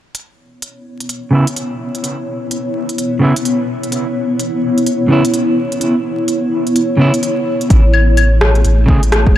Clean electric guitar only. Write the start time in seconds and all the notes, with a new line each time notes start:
1.31 C#3 B3 E4
3.19 C#3 B3
3.23 E4
5.08 C#3 B3
5.12 E4
6.97 C#3 B3
7.01 E4
8.86 C#3 A3
8.90 G#4